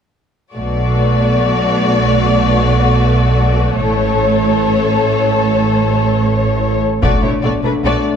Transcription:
0, 0, Header, 1, 8, 480
1, 0, Start_track
1, 0, Key_signature, 2, "minor"
1, 0, Tempo, 810811
1, 327, Time_signature, 4, 2, 24, 8
1, 4832, End_track
2, 0, Start_track
2, 0, Title_t, "Violin section"
2, 0, Program_c, 0, 48
2, 330, Note_on_c, 0, 74, 39
2, 2218, Note_off_c, 0, 74, 0
2, 2245, Note_on_c, 0, 73, 38
2, 4022, Note_off_c, 0, 73, 0
2, 4165, Note_on_c, 0, 74, 37
2, 4276, Note_off_c, 0, 74, 0
2, 4287, Note_on_c, 0, 73, 31
2, 4334, Note_off_c, 0, 73, 0
2, 4403, Note_on_c, 0, 74, 36
2, 4451, Note_off_c, 0, 74, 0
2, 4527, Note_on_c, 0, 71, 36
2, 4574, Note_off_c, 0, 71, 0
2, 4650, Note_on_c, 0, 74, 48
2, 4760, Note_off_c, 0, 74, 0
2, 4832, End_track
3, 0, Start_track
3, 0, Title_t, "Violin section"
3, 0, Program_c, 1, 48
3, 326, Note_on_c, 1, 66, 35
3, 2216, Note_off_c, 1, 66, 0
3, 2241, Note_on_c, 1, 69, 44
3, 4044, Note_off_c, 1, 69, 0
3, 4160, Note_on_c, 1, 66, 40
3, 4274, Note_off_c, 1, 66, 0
3, 4275, Note_on_c, 1, 64, 29
3, 4322, Note_off_c, 1, 64, 0
3, 4399, Note_on_c, 1, 66, 37
3, 4447, Note_off_c, 1, 66, 0
3, 4526, Note_on_c, 1, 62, 32
3, 4573, Note_off_c, 1, 62, 0
3, 4643, Note_on_c, 1, 66, 39
3, 4756, Note_off_c, 1, 66, 0
3, 4832, End_track
4, 0, Start_track
4, 0, Title_t, "French horn section"
4, 0, Program_c, 2, 60
4, 4166, Note_on_c, 2, 62, 40
4, 4169, Note_on_c, 2, 57, 45
4, 4832, Note_off_c, 2, 57, 0
4, 4832, Note_off_c, 2, 62, 0
4, 4832, End_track
5, 0, Start_track
5, 0, Title_t, "Viola section"
5, 0, Program_c, 3, 48
5, 329, Note_on_c, 3, 57, 34
5, 4021, Note_off_c, 3, 57, 0
5, 4160, Note_on_c, 3, 57, 39
5, 4274, Note_off_c, 3, 57, 0
5, 4285, Note_on_c, 3, 57, 28
5, 4332, Note_off_c, 3, 57, 0
5, 4403, Note_on_c, 3, 57, 32
5, 4450, Note_off_c, 3, 57, 0
5, 4526, Note_on_c, 3, 57, 31
5, 4573, Note_off_c, 3, 57, 0
5, 4643, Note_on_c, 3, 57, 47
5, 4757, Note_off_c, 3, 57, 0
5, 4832, End_track
6, 0, Start_track
6, 0, Title_t, "Cello section"
6, 0, Program_c, 4, 48
6, 327, Note_on_c, 4, 47, 38
6, 2217, Note_off_c, 4, 47, 0
6, 2240, Note_on_c, 4, 45, 47
6, 4020, Note_off_c, 4, 45, 0
6, 4160, Note_on_c, 4, 47, 39
6, 4208, Note_off_c, 4, 47, 0
6, 4279, Note_on_c, 4, 47, 28
6, 4326, Note_off_c, 4, 47, 0
6, 4401, Note_on_c, 4, 47, 37
6, 4448, Note_off_c, 4, 47, 0
6, 4522, Note_on_c, 4, 47, 36
6, 4569, Note_off_c, 4, 47, 0
6, 4639, Note_on_c, 4, 47, 46
6, 4687, Note_off_c, 4, 47, 0
6, 4832, End_track
7, 0, Start_track
7, 0, Title_t, "Double bass section"
7, 0, Program_c, 5, 48
7, 332, Note_on_c, 5, 35, 36
7, 2219, Note_off_c, 5, 35, 0
7, 2245, Note_on_c, 5, 33, 44
7, 4022, Note_off_c, 5, 33, 0
7, 4160, Note_on_c, 5, 35, 49
7, 4208, Note_off_c, 5, 35, 0
7, 4403, Note_on_c, 5, 35, 34
7, 4451, Note_off_c, 5, 35, 0
7, 4643, Note_on_c, 5, 35, 45
7, 4691, Note_off_c, 5, 35, 0
7, 4832, End_track
8, 0, Start_track
8, 0, Title_t, "Taiko and cinematic ensemble drums"
8, 4163, Note_on_c, 9, 41, 46
8, 4222, Note_off_c, 9, 41, 0
8, 4832, End_track
0, 0, End_of_file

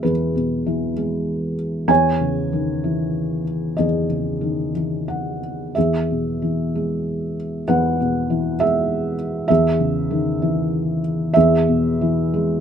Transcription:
0, 0, Header, 1, 2, 480
1, 0, Start_track
1, 0, Key_signature, 4, "major"
1, 0, Tempo, 621118
1, 44, Time_signature, 3, 2, 24, 8
1, 2923, Tempo, 655738
1, 5323, Tempo, 610998
1, 8203, Tempo, 636943
1, 9163, Tempo, 681818
1, 9587, End_track
2, 0, Start_track
2, 0, Title_t, "Felt piano"
2, 0, Program_c, 0, 0
2, 0, Control_c, 0, 64, 127
2, 0, Note_on_c, 0, 40, 37
2, 0, Note_on_c, 0, 47, 25
2, 0, Note_on_c, 0, 52, 28
2, 0, Note_on_c, 0, 56, 32
2, 0, Note_on_c, 0, 68, 36
2, 0, Note_on_c, 0, 76, 53
2, 22, Note_on_c, 0, 71, 52
2, 33, Note_off_c, 0, 40, 0
2, 33, Note_on_c, 0, 40, 43
2, 38, Note_off_c, 0, 68, 0
2, 38, Note_on_c, 0, 68, 39
2, 80, Note_off_c, 0, 76, 0
2, 247, Note_off_c, 0, 56, 0
2, 272, Note_off_c, 0, 47, 0
2, 272, Note_on_c, 0, 47, 34
2, 513, Note_off_c, 0, 52, 0
2, 513, Note_on_c, 0, 52, 40
2, 714, Note_off_c, 0, 71, 0
2, 722, Note_off_c, 0, 68, 0
2, 751, Note_on_c, 0, 56, 38
2, 1190, Note_off_c, 0, 47, 0
2, 1428, Note_off_c, 0, 40, 0
2, 1431, Note_off_c, 0, 52, 0
2, 1440, Note_off_c, 0, 56, 0
2, 1450, Note_on_c, 0, 40, 53
2, 1453, Note_on_c, 0, 80, 74
2, 1472, Note_on_c, 0, 73, 54
2, 1474, Control_c, 0, 64, 0
2, 1599, Control_c, 0, 64, 127
2, 1708, Note_on_c, 0, 49, 39
2, 1954, Note_on_c, 0, 51, 40
2, 2193, Note_on_c, 0, 52, 39
2, 2651, Note_off_c, 0, 49, 0
2, 2885, Note_off_c, 0, 40, 0
2, 2895, Note_off_c, 0, 51, 0
2, 2896, Note_off_c, 0, 73, 0
2, 2910, Note_on_c, 0, 75, 52
2, 2926, Note_on_c, 0, 40, 47
2, 2927, Note_on_c, 0, 68, 38
2, 2959, Note_off_c, 0, 80, 0
2, 3127, Note_off_c, 0, 52, 0
2, 3151, Note_on_c, 0, 49, 32
2, 3382, Note_on_c, 0, 51, 34
2, 3600, Note_off_c, 0, 75, 0
2, 3608, Note_off_c, 0, 68, 0
2, 3628, Note_on_c, 0, 52, 32
2, 3874, Note_on_c, 0, 78, 41
2, 4095, Note_off_c, 0, 49, 0
2, 4335, Note_off_c, 0, 51, 0
2, 4337, Note_off_c, 0, 78, 0
2, 4342, Note_off_c, 0, 40, 0
2, 4345, Note_off_c, 0, 52, 0
2, 4362, Note_on_c, 0, 76, 52
2, 4374, Note_on_c, 0, 68, 36
2, 4378, Control_c, 0, 64, 0
2, 4384, Note_on_c, 0, 40, 42
2, 4484, Control_c, 0, 64, 127
2, 4623, Note_on_c, 0, 47, 29
2, 4855, Note_on_c, 0, 52, 36
2, 5098, Note_on_c, 0, 56, 35
2, 5543, Note_off_c, 0, 47, 0
2, 5777, Note_off_c, 0, 76, 0
2, 5784, Note_off_c, 0, 52, 0
2, 5784, Note_off_c, 0, 68, 0
2, 5789, Note_off_c, 0, 40, 0
2, 5807, Note_on_c, 0, 78, 70
2, 5814, Note_on_c, 0, 71, 50
2, 5818, Note_on_c, 0, 40, 51
2, 6031, Note_off_c, 0, 56, 0
2, 6063, Note_on_c, 0, 47, 35
2, 6296, Note_on_c, 0, 52, 41
2, 6497, Note_off_c, 0, 71, 0
2, 6531, Note_on_c, 0, 76, 80
2, 6537, Note_on_c, 0, 56, 39
2, 6547, Note_off_c, 0, 78, 0
2, 6967, Note_off_c, 0, 76, 0
2, 6973, Note_off_c, 0, 47, 0
2, 7206, Note_off_c, 0, 40, 0
2, 7208, Note_off_c, 0, 52, 0
2, 7218, Note_off_c, 0, 56, 0
2, 7222, Note_on_c, 0, 76, 81
2, 7238, Note_on_c, 0, 40, 58
2, 7244, Note_on_c, 0, 68, 57
2, 7247, Control_c, 0, 64, 0
2, 7358, Control_c, 0, 64, 127
2, 7475, Note_on_c, 0, 49, 43
2, 7715, Note_on_c, 0, 51, 49
2, 7961, Note_on_c, 0, 52, 46
2, 8412, Note_off_c, 0, 49, 0
2, 8638, Note_off_c, 0, 76, 0
2, 8646, Note_off_c, 0, 40, 0
2, 8647, Note_off_c, 0, 51, 0
2, 8649, Note_off_c, 0, 68, 0
2, 8655, Note_off_c, 0, 52, 0
2, 8661, Note_on_c, 0, 76, 82
2, 8677, Note_on_c, 0, 68, 59
2, 8684, Note_on_c, 0, 40, 63
2, 8686, Control_c, 0, 64, 0
2, 8810, Control_c, 0, 64, 127
2, 8922, Note_on_c, 0, 47, 42
2, 9172, Note_on_c, 0, 52, 48
2, 9400, Note_on_c, 0, 56, 48
2, 9587, Note_off_c, 0, 40, 0
2, 9587, Note_off_c, 0, 47, 0
2, 9587, Note_off_c, 0, 52, 0
2, 9587, Note_off_c, 0, 56, 0
2, 9587, Note_off_c, 0, 68, 0
2, 9587, Note_off_c, 0, 76, 0
2, 9587, End_track
0, 0, End_of_file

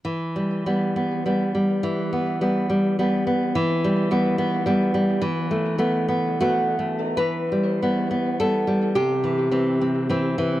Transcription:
0, 0, Header, 1, 2, 480
1, 0, Start_track
1, 0, Key_signature, 1, "minor"
1, 0, Tempo, 597610
1, 36, Time_signature, 3, 2, 24, 8
1, 1476, Tempo, 567644
1, 4836, Tempo, 617284
1, 5316, Tempo, 762389
1, 5796, Tempo, 634921
1, 6276, Tempo, 564440
1, 8635, End_track
2, 0, Start_track
2, 0, Title_t, "Nylon-string guitar"
2, 0, Program_c, 0, 24
2, 38, Note_on_c, 0, 52, 46
2, 288, Note_on_c, 0, 55, 33
2, 522, Note_off_c, 0, 55, 0
2, 532, Note_on_c, 0, 55, 30
2, 536, Note_on_c, 0, 59, 35
2, 762, Note_off_c, 0, 59, 0
2, 771, Note_on_c, 0, 59, 36
2, 1000, Note_off_c, 0, 55, 0
2, 1004, Note_off_c, 0, 59, 0
2, 1010, Note_on_c, 0, 55, 35
2, 1014, Note_on_c, 0, 59, 35
2, 1233, Note_off_c, 0, 55, 0
2, 1242, Note_on_c, 0, 55, 37
2, 1445, Note_off_c, 0, 52, 0
2, 1471, Note_on_c, 0, 52, 48
2, 1689, Note_off_c, 0, 59, 0
2, 1721, Note_on_c, 0, 59, 35
2, 1951, Note_off_c, 0, 55, 0
2, 1956, Note_off_c, 0, 59, 0
2, 1961, Note_on_c, 0, 55, 36
2, 1966, Note_on_c, 0, 59, 35
2, 2191, Note_off_c, 0, 55, 0
2, 2201, Note_on_c, 0, 55, 41
2, 2440, Note_off_c, 0, 55, 0
2, 2442, Note_off_c, 0, 59, 0
2, 2449, Note_on_c, 0, 55, 37
2, 2454, Note_on_c, 0, 59, 43
2, 2675, Note_off_c, 0, 59, 0
2, 2686, Note_on_c, 0, 59, 41
2, 2895, Note_off_c, 0, 52, 0
2, 2900, Note_off_c, 0, 55, 0
2, 2926, Note_on_c, 0, 52, 58
2, 2929, Note_off_c, 0, 59, 0
2, 3172, Note_on_c, 0, 55, 46
2, 3387, Note_off_c, 0, 55, 0
2, 3397, Note_on_c, 0, 55, 43
2, 3401, Note_on_c, 0, 59, 46
2, 3618, Note_off_c, 0, 59, 0
2, 3628, Note_on_c, 0, 59, 49
2, 3851, Note_off_c, 0, 55, 0
2, 3859, Note_off_c, 0, 59, 0
2, 3862, Note_on_c, 0, 55, 49
2, 3869, Note_on_c, 0, 59, 52
2, 4090, Note_off_c, 0, 55, 0
2, 4100, Note_on_c, 0, 55, 48
2, 4310, Note_off_c, 0, 52, 0
2, 4317, Note_off_c, 0, 59, 0
2, 4332, Note_on_c, 0, 52, 64
2, 4344, Note_off_c, 0, 55, 0
2, 4580, Note_on_c, 0, 57, 46
2, 4803, Note_off_c, 0, 57, 0
2, 4813, Note_on_c, 0, 57, 43
2, 4818, Note_on_c, 0, 59, 49
2, 5040, Note_off_c, 0, 59, 0
2, 5049, Note_on_c, 0, 59, 48
2, 5293, Note_off_c, 0, 57, 0
2, 5295, Note_off_c, 0, 59, 0
2, 5298, Note_on_c, 0, 66, 58
2, 5301, Note_on_c, 0, 57, 41
2, 5307, Note_on_c, 0, 59, 45
2, 5535, Note_off_c, 0, 57, 0
2, 5543, Note_on_c, 0, 57, 39
2, 5765, Note_off_c, 0, 52, 0
2, 5765, Note_off_c, 0, 59, 0
2, 5769, Note_off_c, 0, 66, 0
2, 5783, Note_on_c, 0, 71, 64
2, 5791, Note_off_c, 0, 57, 0
2, 5792, Note_on_c, 0, 52, 47
2, 6043, Note_on_c, 0, 55, 33
2, 6273, Note_off_c, 0, 55, 0
2, 6276, Note_on_c, 0, 59, 37
2, 6283, Note_on_c, 0, 55, 32
2, 6505, Note_off_c, 0, 59, 0
2, 6515, Note_on_c, 0, 59, 35
2, 6720, Note_off_c, 0, 71, 0
2, 6752, Note_off_c, 0, 55, 0
2, 6761, Note_on_c, 0, 55, 34
2, 6762, Note_on_c, 0, 69, 61
2, 6763, Note_off_c, 0, 59, 0
2, 6773, Note_on_c, 0, 59, 38
2, 6986, Note_off_c, 0, 55, 0
2, 6996, Note_on_c, 0, 55, 38
2, 7200, Note_off_c, 0, 52, 0
2, 7207, Note_off_c, 0, 59, 0
2, 7216, Note_off_c, 0, 69, 0
2, 7234, Note_off_c, 0, 55, 0
2, 7234, Note_on_c, 0, 67, 60
2, 7239, Note_on_c, 0, 48, 54
2, 7476, Note_on_c, 0, 52, 39
2, 7703, Note_off_c, 0, 52, 0
2, 7713, Note_on_c, 0, 52, 37
2, 7717, Note_on_c, 0, 60, 42
2, 7957, Note_off_c, 0, 60, 0
2, 7967, Note_on_c, 0, 60, 43
2, 8165, Note_off_c, 0, 67, 0
2, 8195, Note_off_c, 0, 52, 0
2, 8203, Note_off_c, 0, 60, 0
2, 8206, Note_on_c, 0, 52, 44
2, 8213, Note_on_c, 0, 60, 47
2, 8439, Note_off_c, 0, 52, 0
2, 8449, Note_on_c, 0, 52, 46
2, 8635, Note_off_c, 0, 48, 0
2, 8635, Note_off_c, 0, 52, 0
2, 8635, Note_off_c, 0, 60, 0
2, 8635, End_track
0, 0, End_of_file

